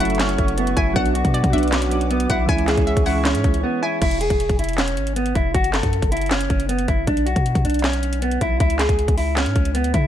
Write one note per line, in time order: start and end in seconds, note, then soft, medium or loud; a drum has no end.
0.00 0.37 F#1 loud
0.00 0.06 F#3 loud
0.00 0.08 A3 medium
0.00 0.02 C#4 medium
0.00 0.10 C#4 medium
0.00 0.04 E4 loud
0.00 0.17 E4 medium
0.00 0.12 E4 medium
0.00 0.94 A4 medium
0.00 0.93 E5 medium
0.00 0.94 F#5 medium
0.00 0.18 F#5 medium
0.00 0.94 C#6 medium
0.00 closed hi-hat medium
0.00 open hi-hat medium
0.05 0.69 F#3 medium
0.05 0.70 A3 medium
0.05 closed hi-hat medium
0.10 0.71 C#4 medium
0.10 0.72 E4 medium
0.10 closed hi-hat soft
0.15 closed hi-hat soft
0.19 0.56 C#4 medium
0.19 snare loud
0.19 clap medium
0.19 closed hi-hat medium
0.29 closed hi-hat medium
0.38 0.75 F#1 loud
0.38 kick medium
0.38 closed hi-hat medium
0.48 closed hi-hat medium
0.58 0.74 B3 medium
0.58 closed hi-hat medium
0.67 closed hi-hat medium
0.77 0.95 F#1 loud
0.77 0.93 E4 medium
0.77 0.95 G#5 medium
0.77 kick medium
0.77 closed hi-hat medium
0.94 1.23 B1 loud
0.94 1.41 F#3 loud
0.94 1.42 B3 loud
0.94 1.12 D4 loud
0.94 2.47 B4 medium
0.94 1.32 F#5 loud
0.94 2.47 F#5 medium
0.94 2.47 D6 medium
0.94 kick loud
0.94 closed hi-hat medium
0.98 1.43 D4 loud
0.98 1.44 F#4 loud
1.06 closed hi-hat medium
1.15 1.51 F#4 medium
1.15 closed hi-hat medium
1.25 1.43 B2 loud
1.25 kick medium
1.25 closed hi-hat medium
1.34 1.52 D5 medium
1.34 closed hi-hat medium
1.44 1.53 B2 loud
1.44 kick medium
1.44 closed hi-hat medium
1.50 2.27 B1 loud
1.50 1.82 F#3 medium
1.50 1.83 B3 medium
1.50 1.69 D4 medium
1.50 1.84 D4 medium
1.50 1.71 E5 medium
1.50 closed hi-hat medium
1.56 1.85 F#4 medium
1.56 closed hi-hat medium
1.63 closed hi-hat soft
1.68 closed hi-hat soft
1.72 2.08 C#4 medium
1.72 snare loud
1.72 clap medium
1.72 closed hi-hat medium
1.82 closed hi-hat medium
1.89 2.36 F#3 medium
1.89 2.37 B3 medium
1.89 2.38 D4 medium
1.89 closed hi-hat medium
1.95 2.39 F#4 medium
2.01 closed hi-hat medium
2.11 2.27 B3 medium
2.11 closed hi-hat medium
2.20 closed hi-hat medium
2.30 2.48 B1 loud
2.30 2.46 E4 medium
2.30 2.48 F#5 medium
2.30 kick medium
2.30 closed hi-hat medium
2.46 2.76 C#2 loud
2.46 2.70 E3 loud
2.46 2.71 G#3 medium
2.46 2.65 E4 loud
2.46 4.00 G#4 medium
2.46 4.00 C#5 medium
2.46 4.00 E5 medium
2.46 2.85 G#5 loud
2.46 4.00 C#6 medium
2.46 kick loud
2.46 closed hi-hat medium
2.50 2.72 C#4 medium
2.50 2.73 E4 loud
2.58 closed hi-hat medium
2.68 3.04 G#4 medium
2.68 snare loud
2.68 clap medium
2.68 closed hi-hat medium
2.74 2.96 C#2 loud
2.74 2.99 E3 medium
2.74 3.00 G#3 medium
2.74 kick medium
2.74 closed hi-hat medium
2.78 3.01 C#4 medium
2.78 3.02 E4 medium
2.87 3.05 E5 medium
2.87 closed hi-hat medium
2.97 3.36 C#2 loud
2.97 kick medium
2.97 closed hi-hat medium
3.04 3.11 E3 medium
3.04 3.13 G#3 medium
3.04 3.14 C#4 medium
3.04 3.22 E4 medium
3.04 3.24 F#5 medium
3.04 open hi-hat medium
3.09 3.75 E3 medium
3.09 3.15 E4 medium
3.14 3.76 G#3 medium
3.14 3.77 C#4 medium
3.14 3.78 E4 medium
3.25 3.61 C#4 medium
3.25 snare loud
3.25 clap medium
3.25 closed hi-hat medium
3.35 3.44 G#2 loud
3.35 closed hi-hat medium
3.44 3.63 C#2 loud
3.44 kick loud
3.44 closed hi-hat medium
3.54 closed hi-hat medium
3.63 3.80 B3 medium
3.82 3.99 E4 medium
3.82 4.01 G#5 medium
4.02 4.29 E1 loud
4.02 4.18 E4 loud
4.02 kick loud
4.02 closed hi-hat medium
4.02 crash medium
4.11 closed hi-hat medium
4.21 4.57 G#4 medium
4.21 closed hi-hat medium
4.30 4.49 E1 loud
4.30 kick medium
4.30 closed hi-hat medium
4.40 closed hi-hat medium
4.49 4.58 E1 loud
4.49 kick medium
4.49 closed hi-hat medium
4.59 4.99 E1 loud
4.59 4.75 E4 medium
4.59 closed hi-hat medium
4.64 closed hi-hat medium
4.69 closed hi-hat soft
4.73 closed hi-hat soft
4.78 5.14 C#4 medium
4.78 snare loud
4.78 clap medium
4.78 closed hi-hat medium
4.88 closed hi-hat medium
4.97 5.33 G#1 loud
4.97 closed hi-hat medium
5.07 closed hi-hat medium
5.16 5.32 B3 medium
5.16 closed hi-hat medium
5.26 closed hi-hat medium
5.35 5.54 E1 loud
5.35 5.51 E4 medium
5.35 kick medium
5.35 closed hi-hat medium
5.54 5.82 F#1 loud
5.54 5.71 F#4 loud
5.54 kick loud
5.54 closed hi-hat medium
5.64 closed hi-hat medium
5.73 6.10 A4 medium
5.73 snare loud
5.73 clap medium
5.73 closed hi-hat medium
5.83 6.02 F#2 loud
5.83 kick medium
5.83 closed hi-hat medium
5.93 closed hi-hat medium
6.02 6.48 F#1 loud
6.02 kick medium
6.02 closed hi-hat medium
6.12 6.28 E4 medium
6.12 closed hi-hat medium
6.12 open hi-hat medium
6.17 closed hi-hat medium
6.21 closed hi-hat soft
6.26 closed hi-hat soft
6.31 6.67 C#4 medium
6.31 snare loud
6.31 clap medium
6.31 closed hi-hat medium
6.41 closed hi-hat medium
6.50 6.87 F#1 loud
6.50 kick medium
6.50 closed hi-hat medium
6.60 closed hi-hat medium
6.69 6.85 B3 medium
6.69 closed hi-hat medium
6.79 closed hi-hat medium
6.88 7.07 F#1 loud
6.88 7.04 E4 medium
6.88 kick medium
6.88 closed hi-hat medium
7.07 7.35 B1 loud
7.07 7.24 D4 loud
7.07 kick loud
7.07 closed hi-hat medium
7.17 closed hi-hat medium
7.26 7.62 F#4 medium
7.26 closed hi-hat medium
7.36 7.54 B2 loud
7.36 kick medium
7.36 closed hi-hat medium
7.46 closed hi-hat medium
7.55 7.64 B2 loud
7.55 kick medium
7.55 closed hi-hat medium
7.65 8.38 B1 loud
7.65 7.81 D4 medium
7.65 closed hi-hat medium
7.70 closed hi-hat medium
7.74 closed hi-hat soft
7.79 closed hi-hat soft
7.84 8.20 C#4 medium
7.84 snare loud
7.84 clap medium
7.84 closed hi-hat medium
7.93 closed hi-hat medium
8.03 closed hi-hat medium
8.13 closed hi-hat medium
8.22 8.38 B3 medium
8.22 closed hi-hat medium
8.31 closed hi-hat medium
8.41 8.60 B1 loud
8.41 8.58 E4 medium
8.41 kick medium
8.41 closed hi-hat medium
8.60 8.88 C#2 loud
8.60 8.76 E4 medium
8.60 kick loud
8.60 closed hi-hat medium
8.70 closed hi-hat medium
8.79 9.15 G#4 medium
8.79 snare loud
8.79 clap medium
8.79 closed hi-hat medium
8.89 9.07 C#2 loud
8.89 kick medium
8.89 closed hi-hat medium
8.99 closed hi-hat medium
9.08 9.48 C#2 loud
9.08 kick medium
9.08 closed hi-hat medium
9.18 9.34 E4 medium
9.18 open hi-hat medium
9.36 9.72 C#4 medium
9.36 snare loud
9.36 clap medium
9.36 closed hi-hat medium
9.46 9.55 G#2 loud
9.46 closed hi-hat medium
9.56 9.86 C#2 loud
9.56 kick medium
9.56 closed hi-hat medium
9.65 closed hi-hat medium
9.75 9.91 B3 medium
9.75 closed hi-hat medium
9.84 9.94 D2 loud
9.84 closed hi-hat medium
9.94 10.07 C#3 loud
9.94 10.07 E4 medium
9.94 kick medium
9.94 closed hi-hat medium